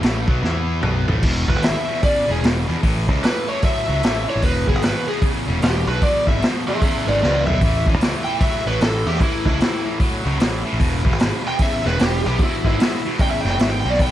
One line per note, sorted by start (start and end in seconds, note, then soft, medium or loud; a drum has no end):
0.02 0.26 A1 medium
0.02 0.27 A2 medium
0.02 0.28 E3 medium
0.02 0.28 A3 loud
0.02 snare loud
0.02 open hi-hat soft
0.28 0.42 B1 medium
0.28 0.42 B2 medium
0.28 0.42 F#3 medium
0.28 0.42 B3 medium
0.28 kick loud
0.42 0.80 E2 medium
0.42 0.81 E3 medium
0.42 0.82 B3 medium
0.42 0.83 E4 medium
0.42 snare medium
0.82 1.06 B1 medium
0.82 1.06 B2 medium
0.82 1.07 F#3 medium
0.82 1.07 B3 loud
0.82 mid tom medium
1.07 1.22 A1 medium
1.07 1.22 A2 medium
1.07 1.22 E3 medium
1.07 1.22 A3 medium
1.07 floor tom medium
1.22 1.45 E1 medium
1.22 1.45 E2 medium
1.22 1.46 B2 medium
1.22 kick loud
1.22 crash loud
1.47 1.56 E1 medium
1.47 1.61 E2 medium
1.47 1.61 B2 medium
1.47 1.63 B4 medium
1.47 kick medium
1.56 1.73 G#1 medium
1.62 1.85 E2 medium
1.62 1.86 B2 medium
1.62 2.02 E5 medium
1.62 snare loud
1.62 open hi-hat medium
1.88 2.01 E2 medium
1.88 2.01 B2 medium
2.02 2.26 E2 medium
2.02 2.26 C#3 medium
2.02 2.28 D5 medium
2.02 kick loud
2.02 open hi-hat medium
2.27 2.42 E1 medium
2.27 2.41 E2 medium
2.27 2.42 C#3 medium
2.27 2.44 G#4 medium
2.42 2.65 E1 medium
2.42 2.65 E2 medium
2.42 2.65 B2 medium
2.42 snare loud
2.42 open hi-hat medium
2.67 2.81 E2 medium
2.67 2.75 E2 loud
2.67 2.81 B2 medium
2.82 3.08 A1 medium
2.82 3.05 A2 medium
2.82 3.06 E3 medium
2.82 kick loud
2.82 open hi-hat medium
3.08 3.21 C#2 medium
3.08 3.22 A2 medium
3.08 3.22 E3 medium
3.08 kick medium
3.23 3.46 A2 medium
3.23 3.46 E3 medium
3.23 3.48 B4 medium
3.23 snare loud
3.23 open hi-hat medium
3.48 3.61 A2 medium
3.48 3.61 E3 medium
3.48 3.63 C#5 medium
3.62 3.86 A2 medium
3.62 3.86 F#3 medium
3.62 4.27 E5 medium
3.62 kick loud
3.62 open hi-hat medium
3.87 4.03 C#2 medium
3.87 4.01 A2 medium
3.87 4.02 F#3 medium
4.03 4.25 A1 medium
4.03 4.26 A2 medium
4.03 4.26 E3 loud
4.03 snare loud
4.03 open hi-hat medium
4.27 4.41 A2 medium
4.27 4.42 E3 medium
4.27 4.43 C#5 medium
4.36 4.42 A1 medium
4.42 4.65 E1 medium
4.42 4.65 E2 medium
4.42 4.66 B2 medium
4.42 4.68 B4 medium
4.42 kick loud
4.42 open hi-hat medium
4.68 4.75 E1 medium
4.68 4.82 E2 medium
4.68 4.82 B2 medium
4.68 4.83 G#4 medium
4.68 kick medium
4.75 4.93 G#1 medium
4.82 5.06 E2 medium
4.82 5.06 B2 medium
4.82 5.08 B4 medium
4.82 snare loud
4.82 open hi-hat medium
5.07 5.21 E2 medium
5.07 5.21 B2 medium
5.07 5.23 G#4 medium
5.22 5.45 E2 medium
5.22 5.45 C#3 medium
5.22 kick loud
5.22 open hi-hat medium
5.47 5.61 E1 medium
5.47 5.60 E2 medium
5.47 5.61 C#3 medium
5.62 5.84 E1 medium
5.62 5.85 E2 medium
5.62 5.85 B2 medium
5.62 5.88 G4 medium
5.62 snare loud
5.62 open hi-hat medium
5.87 6.00 B1 loud
5.87 6.00 E2 medium
5.87 6.01 B2 medium
5.87 6.02 B4 medium
6.02 6.25 E2 medium
6.02 6.25 B2 medium
6.02 6.27 D5 medium
6.02 kick loud
6.02 open hi-hat medium
6.27 6.41 G#1 medium
6.27 6.39 E2 medium
6.27 6.39 B2 medium
6.27 6.42 E5 medium
6.27 kick medium
6.40 6.64 E2 medium
6.40 6.64 B2 medium
6.40 snare loud
6.40 open hi-hat soft
6.66 6.80 E2 medium
6.66 6.81 B2 medium
6.66 6.81 G#4 medium
6.66 6.82 E5 medium
6.82 7.05 E2 medium
6.82 7.05 C#3 medium
6.82 7.06 G#4 medium
6.82 7.07 E5 medium
6.82 kick loud
6.82 open hi-hat medium
7.07 7.22 G#1 medium
7.07 7.20 E2 medium
7.07 7.21 C#3 medium
7.07 7.21 B4 medium
7.07 7.21 D5 medium
7.22 7.45 C#2 medium
7.22 7.45 E2 medium
7.22 7.45 B2 loud
7.22 7.45 B4 medium
7.22 7.45 D5 medium
7.22 snare medium
7.46 7.61 B1 medium
7.46 7.61 E2 medium
7.46 7.61 B2 medium
7.46 7.85 E5 medium
7.46 floor tom medium
7.61 7.84 A1 medium
7.61 7.85 A2 medium
7.61 7.85 E3 medium
7.61 kick loud
7.61 open hi-hat medium
7.86 7.94 A1 medium
7.86 8.00 A2 medium
7.86 8.01 E3 medium
7.86 kick medium
7.94 8.12 C#2 medium
8.01 8.24 A2 medium
8.01 8.24 E3 medium
8.01 snare loud
8.01 open hi-hat medium
8.24 8.40 A2 medium
8.24 8.40 E3 medium
8.24 8.40 G5 medium
8.40 8.64 A2 medium
8.40 8.64 F#3 medium
8.40 8.65 E5 medium
8.40 kick loud
8.40 open hi-hat medium
8.66 8.79 A1 medium
8.66 8.79 A2 medium
8.66 8.80 F#3 medium
8.66 8.81 B4 medium
8.81 9.03 A1 loud
8.81 9.04 A2 medium
8.81 9.04 E3 medium
8.81 9.06 A4 medium
8.81 snare loud
8.81 open hi-hat medium
9.06 9.19 E2 loud
9.06 9.20 A2 medium
9.06 9.20 E3 medium
9.06 9.21 G4 medium
9.15 snare soft
9.20 9.44 A2 medium
9.20 9.44 E3 medium
9.20 9.45 E4 medium
9.20 kick loud
9.20 open hi-hat medium
9.45 9.59 C#2 medium
9.45 9.59 A2 medium
9.45 9.60 E3 medium
9.45 9.85 E4 medium
9.45 kick medium
9.60 9.84 A2 medium
9.60 9.84 E3 medium
9.60 snare loud
9.60 open hi-hat medium
9.85 9.99 A2 medium
9.85 9.99 E3 medium
10.00 10.23 A2 medium
10.00 10.23 F#3 medium
10.00 kick loud
10.00 open hi-hat medium
10.25 10.40 C#2 medium
10.25 10.37 A2 medium
10.25 10.39 F#3 medium
10.38 10.62 A1 medium
10.38 10.62 A2 medium
10.38 10.63 E3 medium
10.38 snare loud
10.38 open hi-hat medium
10.65 10.79 A2 medium
10.65 10.79 E3 medium
10.73 10.79 A1 medium
10.79 11.02 E1 medium
10.79 11.03 E2 medium
10.79 11.03 B2 medium
10.79 kick loud
10.79 open hi-hat medium
11.04 11.12 E1 medium
11.04 11.18 E2 medium
11.04 11.18 B2 medium
11.04 kick medium
11.12 11.30 G#1 medium
11.19 11.42 E2 medium
11.19 11.43 B2 medium
11.19 snare loud
11.19 open hi-hat medium
11.44 11.58 E2 medium
11.44 11.58 B2 medium
11.44 11.61 G5 medium
11.59 11.82 E2 medium
11.59 11.83 C#3 medium
11.59 11.85 E5 medium
11.59 kick loud
11.59 open hi-hat medium
11.85 11.99 E1 medium
11.85 11.98 E2 medium
11.85 11.98 C#3 medium
11.85 12.00 B4 medium
11.85 snare soft
11.99 12.22 E1 medium
11.99 12.22 E2 medium
11.99 12.22 B2 medium
11.99 12.26 G4 medium
11.99 snare loud
11.99 open hi-hat medium
12.24 12.39 B1 loud
12.24 12.38 E2 medium
12.24 12.38 B2 medium
12.24 12.41 G4 medium
12.39 12.62 E2 medium
12.39 12.62 B2 medium
12.39 kick loud
12.39 open hi-hat medium
12.43 12.66 E4 medium
12.64 12.78 G#1 medium
12.64 12.77 E2 medium
12.64 12.78 B2 medium
12.64 13.05 E4 medium
12.64 kick medium
12.78 13.02 E2 medium
12.78 13.02 B2 medium
12.78 snare loud
12.78 open hi-hat medium
13.05 13.18 E2 medium
13.05 13.18 B2 medium
13.19 13.42 E2 medium
13.19 13.43 C#3 medium
13.19 13.31 G5 loud
13.19 kick loud
13.19 open hi-hat medium
13.31 13.41 E5 medium
13.41 13.58 E2 medium
13.41 13.50 G5 medium
13.45 13.58 F#1 medium
13.45 13.58 C#3 medium
13.45 snare soft
13.51 13.61 G5 medium
13.59 13.82 G#1 medium
13.59 13.82 E2 medium
13.59 13.82 B2 medium
13.59 13.70 E5 medium
13.59 snare loud
13.59 open hi-hat medium
13.70 13.79 G5 medium
13.80 13.90 G5 medium
13.85 13.98 B1 medium
13.85 13.98 E2 medium
13.85 13.98 B2 medium
13.90 13.98 D5 medium
13.90 snare soft
13.99 14.11 B1 medium
13.99 14.11 B2 medium
13.99 14.11 F#3 medium
13.99 14.11 G5 medium
13.99 kick loud
13.99 open hi-hat medium